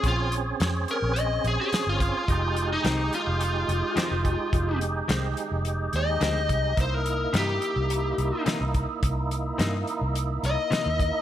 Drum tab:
HH |xxxxxxxx|xxxxxxxx|xxxxxxxx|xxxxxxxx|
SD |--o---o-|--o---o-|--o---o-|--o---o-|
BD |o------o|o------o|o------o|o------o|

HH |xxxxxxxx|
SD |--o---o-|
BD |o------o|